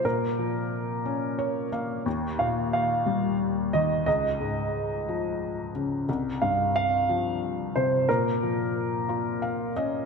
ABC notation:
X:1
M:6/8
L:1/8
Q:3/8=60
K:Bbdor
V:1 name="Grand piano"
B4- B z | z f f2 z e | e4- e z | z f f2 z c |
B4- B z |]
V:2 name="Felt piano"
z4 d f | z6 | z6 | z6 |
z4 f e |]
V:3 name="Felt piano" clef=bass
B,, F,2 D2 B, | E,, B,,2 G,2 E, | D,, A,,2 F,2 D, | C,, G,,2 F,2 C, |
B,, F,2 F2 D |]